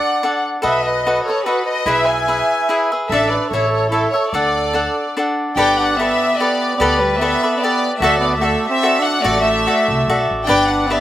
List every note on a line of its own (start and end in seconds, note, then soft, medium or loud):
0.00 0.22 D4 soft
0.00 0.22 A4 medium
0.00 0.22 D5 medium
0.00 0.40 D5 medium
0.00 0.23 F#5 medium
0.00 0.41 F#5 medium
0.23 0.63 D4 medium
0.23 0.61 A4 medium
0.23 0.63 D5 medium
0.23 0.63 F#5 medium
0.62 1.18 B1 medium
0.62 1.06 F#4 medium
0.62 1.05 A4 medium
0.62 0.85 B4 medium
0.62 1.07 B4 medium
0.62 1.06 D#5 medium
0.62 0.85 E5 medium
0.84 1.24 B4 medium
0.84 1.27 D#5 medium
1.07 1.28 F#4 medium
1.07 1.28 A4 soft
1.07 1.28 B4 medium
1.07 1.27 D#5 medium
1.24 1.47 A4 medium
1.24 1.44 C#5 medium
1.24 1.47 D#5 soft
1.29 1.45 A4 soft
1.29 1.45 B4 soft
1.45 1.65 F#4 medium
1.45 1.86 F#4 medium
1.45 1.87 A4 medium
1.45 1.86 B4 medium
1.45 1.69 B4 medium
1.45 1.87 D#5 medium
1.66 1.85 B4 medium
1.66 1.86 D#5 medium
1.85 2.39 B1 medium
1.85 2.28 E4 medium
1.85 2.27 G#4 medium
1.85 2.08 B4 medium
1.85 2.28 B4 medium
1.85 2.29 E5 medium
1.85 2.10 E5 medium
2.06 2.89 E5 medium
2.06 2.90 G#5 medium
2.28 2.68 E4 soft
2.28 2.69 G#4 medium
2.28 2.68 B4 medium
2.28 2.69 E5 soft
2.69 2.90 E4 medium
2.69 2.91 G#4 medium
2.69 2.91 B4 medium
2.69 2.91 E5 medium
2.92 3.11 G#4 soft
2.92 3.10 B4 soft
2.92 3.10 E5 soft
3.08 3.36 A1 medium
3.08 3.32 A4 medium
3.08 3.30 E5 medium
3.12 3.52 D4 medium
3.12 3.53 A4 medium
3.12 3.52 D5 medium
3.12 3.52 E5 medium
3.31 3.49 B4 medium
3.31 3.51 D5 medium
3.50 4.04 A1 medium
3.50 3.91 E4 medium
3.50 3.69 A4 medium
3.50 3.71 C#5 medium
3.50 3.91 C#5 medium
3.54 3.91 A4 medium
3.54 3.92 E5 medium
3.69 3.89 A4 medium
3.73 3.91 C#5 medium
3.90 4.11 E4 medium
3.90 4.13 E4 medium
3.90 4.11 A4 medium
3.90 4.13 A4 medium
3.90 4.13 C#5 medium
3.90 4.12 E5 medium
4.10 4.31 A4 medium
4.10 4.29 C#5 medium
4.10 4.33 E5 soft
4.14 4.33 A4 soft
4.14 4.33 C#5 soft
4.31 4.86 D2 medium
4.31 4.73 D4 medium
4.31 5.11 A4 medium
4.31 4.74 A4 medium
4.31 5.11 D5 medium
4.31 4.74 D5 medium
4.31 4.74 F#5 medium
4.73 5.16 D4 medium
4.73 5.17 A4 medium
4.73 5.17 D5 medium
4.73 5.16 F#5 medium
5.17 5.58 D4 medium
5.17 5.57 A4 medium
5.17 5.57 D5 medium
5.17 5.57 F#5 medium
5.55 6.10 G1 medium
5.55 5.77 D4 medium
5.55 5.98 G4 medium
5.55 5.99 A4 medium
5.55 5.99 B4 medium
5.55 6.01 D5 medium
5.55 5.77 G5 medium
5.77 5.98 D4 medium
5.77 5.99 F#5 medium
5.97 6.37 B3 medium
5.97 6.39 G4 soft
5.97 6.40 A4 medium
5.97 6.40 B4 medium
5.97 6.39 E5 medium
6.02 6.42 D5 medium
6.37 6.76 B3 medium
6.37 6.79 G4 medium
6.37 6.81 A4 medium
6.37 6.77 D5 medium
6.41 6.80 B4 medium
6.41 6.81 D5 medium
6.77 7.33 D2 medium
6.77 7.02 B3 medium
6.77 7.20 G4 medium
6.77 6.99 D5 medium
6.81 7.22 A4 medium
6.81 7.20 B4 medium
6.81 7.22 D5 medium
6.99 7.20 G3 medium
6.99 7.19 B4 medium
7.18 7.57 B3 medium
7.18 7.42 G4 medium
7.18 7.43 A4 medium
7.18 7.42 B4 medium
7.18 7.54 E5 medium
7.23 7.41 D5 medium
7.43 7.62 A4 soft
7.43 7.62 B4 soft
7.43 7.62 D5 soft
7.55 7.90 B3 medium
7.55 7.59 C4 soft
7.55 7.61 E5 medium
7.59 7.91 D5 medium
7.63 8.03 G4 medium
7.63 8.02 A4 medium
7.63 8.03 B4 medium
7.63 8.04 D5 medium
7.99 8.54 D2 loud
7.99 8.19 A3 medium
7.99 8.40 F#4 medium
7.99 8.20 E5 medium
8.03 8.41 A4 medium
8.03 8.43 D5 medium
8.03 8.42 E5 medium
8.19 8.37 B3 medium
8.19 8.39 D5 medium
8.37 8.69 A3 medium
8.37 8.67 E5 medium
8.41 8.82 F#4 soft
8.41 8.82 A4 medium
8.41 8.84 D5 medium
8.41 8.83 E5 medium
8.68 9.01 C4 medium
8.68 9.00 E5 loud
8.83 9.23 F#4 medium
8.83 9.23 A4 medium
8.83 9.24 D5 medium
8.83 9.24 E5 medium
9.00 9.22 D4 medium
9.00 9.23 F#5 medium
9.20 9.41 A3 medium
9.20 9.44 D5 medium
9.24 9.66 A1 medium
9.24 9.66 F#4 medium
9.24 9.66 A4 medium
9.24 9.68 D5 medium
9.24 9.66 E5 medium
9.41 10.23 A3 medium
9.41 10.23 E5 medium
9.67 10.08 F#4 medium
9.67 10.08 A4 medium
9.67 10.09 D5 medium
9.67 10.08 E5 medium
9.88 10.06 C2 medium
10.07 10.27 B1 medium
10.07 10.47 F#4 medium
10.07 10.48 A4 medium
10.07 10.49 D5 medium
10.07 10.49 E5 medium
10.30 10.48 A1 medium
10.45 10.67 D4 medium
10.45 10.90 D4 medium
10.45 10.90 G4 medium
10.45 10.67 G5 loud
10.49 11.00 G1 medium
10.49 10.90 B4 medium
10.49 10.91 D5 medium
10.67 10.89 D4 medium
10.67 10.89 F#5 medium
10.87 11.00 B3 medium
10.87 11.00 D4 soft
10.87 11.00 G4 medium
10.87 11.00 B4 soft
10.87 11.00 E5 medium
10.91 11.00 D5 medium